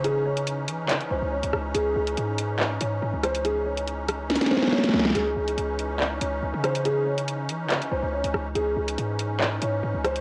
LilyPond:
<<
  \new Staff \with { instrumentName = "Grand piano" } { \time 4/4 \key cis \minor \tempo 4 = 141 gis'8 cis''2 bis'8 cis''4 | gis'8 gis'4. r8 cis''4 bis'8 | gis'8 cis''2 bis'8 cis''4 | gis'8 r2 cis''4 bis'8 |
gis'8 cis''2 bis'8 cis''4 | gis'8 r2 cis''4 bis'8 | }
  \new Staff \with { instrumentName = "Accordion" } { \time 4/4 \key cis \minor dis'1~ | dis'1~ | dis'1 | dis'1~ |
dis'1~ | dis'1 | }
  \new Staff \with { instrumentName = "Accordion" } { \clef bass \time 4/4 \key cis \minor <e cis'>1~ | <e cis'>1~ | <e cis'>1~ | <e cis'>1~ |
<e cis'>1 | <e cis'>1 | }
  \new Staff \with { instrumentName = "808-style bass" } { \clef bass \time 4/4 \key cis \minor cis4. e16. cis16. r16 bis,,16 cis,8 cis,16 cis,8 | cis,8 cis,8 gis,4. gis,8 gis,16 cis,8.~ | cis,2~ cis,16 r4 r16 cis,8 | cis,8 cis,8 cis,4. cis,8 cis,16 cis8.~ |
cis4. e16. cis16. r16 bis,,16 cis,8 cis,16 cis,8 | cis,8 cis,8 gis,4. gis,8 gis,16 cis,8. | }
  \new DrumStaff \with { instrumentName = "Drums" } \drummode { \time 4/4 hh8. hh16 hh8 hh8 <hc hh>16 hh8. r16 hh16 ss8 | hh8. hh16 hh8 hh8 hc8 hh8 r8 <hh ss>16 hh16 | hh8. hh16 hh8 <hh ss>8 <hh sn>32 <hh sn>32 <hh sn>32 <hh sn>32 sn32 sn32 sn32 sn32 sn32 sn32 <hh sn>32 sn32 sn32 sn32 sn32 sn32 | hh8. hh16 hh8 hh8 hc8 hh8 r8 <hh ss>16 hh16 |
hh8. hh16 hh8 hh8 <hc hh>16 hh8. r16 hh16 ss8 | hh8. hh16 hh8 hh8 hc8 hh8 r8 <hh ss>16 hh16 | }
>>